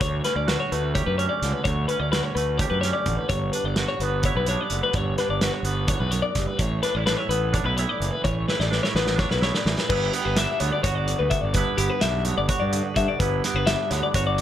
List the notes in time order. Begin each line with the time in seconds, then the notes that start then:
Already playing: D3 D4
0.00 D2 C#5, kick, closed hi-hat
0.24 C#4 B4, snare, closed hi-hat
0.36 D2 D5
0.48 F#4 B4, snare, closed hi-hat
0.60 C#5
0.72 D2 A3 B4, closed hi-hat
0.95 G4 C#5, kick, closed hi-hat
1.06 F#2 B4
1.18 C#4 C#5, closed hi-hat
1.29 D5
1.42 C#2 D3, snare, closed hi-hat
1.53 B4
1.64 D2 C#5, kick, closed hi-hat
1.88 C#4 B4, closed hi-hat
2.00 D2 D5
2.12 F#4 B4, snare, closed hi-hat
2.23 C#5
2.35 D2 A3 B4, closed hi-hat
2.58 G4 C#5, kick, closed hi-hat
2.70 F#2 B4
2.81 C#4 C#5, snare, closed hi-hat
2.93 D5
3.06 A1 D3, kick, closed hi-hat
3.17 B4
3.29 G1 G2 C#5, kick, closed hi-hat
3.53 D4 B4, closed hi-hat
3.64 G1 D5
3.76 F#4 B4, snare, closed hi-hat
3.88 C#5
4.00 G1 B3 B4, closed hi-hat
4.23 E4 C#5, kick, closed hi-hat
4.35 B1 B4
4.46 C#5, closed hi-hat
4.51 D4
4.61 D5
4.70 F#1 D3, closed hi-hat
4.83 B4
4.93 G1 C#5, kick, closed hi-hat
4.97 G2
5.18 D4 B4, snare, closed hi-hat
5.29 G1 D5
5.41 F#4 B4, snare, closed hi-hat
5.53 C#5
5.63 G1 B3 B4, closed hi-hat
5.88 E2 C#5, kick, closed hi-hat
6.00 B1 B4
6.11 F#2 C#5, closed hi-hat
6.22 D5
6.35 F#1 G2, kick, snare, closed hi-hat
6.47 B4
6.59 A1 A2 C#5, kick, closed hi-hat
6.83 D4 B4, snare, closed hi-hat
6.95 A1 E4 D5
7.06 D4 B4, snare, closed hi-hat
7.17 E4 C#5
7.29 A1 B3 B4, closed hi-hat
7.53 D4 C#5, kick, closed hi-hat
7.63 B1 E4 B4
7.77 E4 C#5, closed hi-hat
7.89 D5
8.00 F#1 E3, closed hi-hat
8.12 B4
8.24 A1 A2 C#5, kick, closed hi-hat
8.48 E4 B4, snare
8.59 A1 D5, snare
8.71 D4 B4, snare
8.83 E4 C#5, snare
8.95 A1 B3 B4, snare
9.07 snare
9.16 D4 C#5, kick, snare
9.29 B1 E4 B4, snare
9.41 E4 C#5, snare
9.54 D5, snare
9.65 A1 E3, snare
9.78 B4, snare
9.89 G1 G2 B3 D4 E4 B4, kick, crash
10.13 B3 G4, closed hi-hat
10.25 G1 B4
10.37 D4 E5, snare, closed hi-hat
10.59 D2 D3 B3 C#5, closed hi-hat
10.72 D5
10.83 G1 F#4 C#5, kick, snare, closed hi-hat
10.95 D5
11.07 D3, closed hi-hat
11.19 D2 B4
11.30 E5, kick, closed hi-hat
11.41 G1 D5
11.54 G2 B3 D4 B4, kick, closed hi-hat
11.58 E4
11.78 G1 B3 G4, closed hi-hat
11.90 B4
12.01 B1 D4 E5, snare, closed hi-hat
12.25 D3 B3 C#5, closed hi-hat
12.38 G1 D5
12.49 F#4 C#5, kick, closed hi-hat
12.60 G2 D5
12.73 D3, closed hi-hat
12.83 B4
12.96 G2 E5, kick, closed hi-hat
13.08 D5
13.19 G1 G2 B3 D4 E4 B4, kick, closed hi-hat
13.44 B3 G4, snare, closed hi-hat
13.54 G1 B4
13.67 D4 E5, snare, closed hi-hat
13.90 D2 D3 B3 C#5, snare, closed hi-hat
14.03 D5
14.14 G1 F#4 C#5, kick, closed hi-hat
14.27 D5
14.38 closed hi-hat